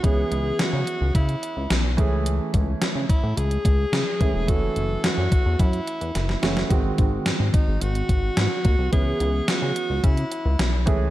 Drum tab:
HH |x-x-x-x-xxx-x-x-|x-x-x-x-xxx-x-x-|x-x-x-x-xxxxx-x-|x-x-x-x-xxx-x-x-|
SD |----o-------o---|----o-------o---|----o-------oooo|----o-------o---|
BD |o-------o-----o-|--o---o---o---o-|o-----o-o-------|o-o---o---o---o-|

HH |x-x-x-x-xxx-x-x-|
SD |----o-------o---|
BD |o-------o-----o-|